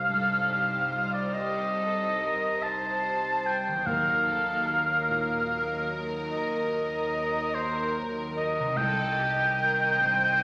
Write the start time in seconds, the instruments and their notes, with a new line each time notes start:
Already playing: felt piano C2, cello section C2, double bass section C2, harp C3 G3 D#4 D#5, viola section G3 D#4, violin section C5, oboe F5
0.08 felt piano G2, violin section A4
0.50 violin section G4
0.92 violin section F4
1.12 oboe D5
1.34 violin section G4, oboe D#5
1.76 violin section A4
2.20 violin section A#4
2.62 violin section C5, oboe A5
3.46 oboe G5
3.68 harp D#3
3.72 harp F#3
3.77 harp D#4
3.85 double bass section D#2, cello section D#2, felt piano D#2, viola section F#3 D#4, violin section A#4, oboe F5
4.26 violin section A4
4.68 violin section A#4
5.09 felt piano A#2
6.31 oboe D#5
7.55 oboe C5
8.37 oboe D#5
8.59 harp C3
8.64 harp C4
8.68 harp D#4
8.73 cello section C2, felt piano C2, viola section D#3 D#4, violin section A4, harp C5
8.77 double bass section C2, violin section D#5, oboe G5
9.18 violin section G4
9.58 violin section A#4
9.99 felt piano G2, violin section C5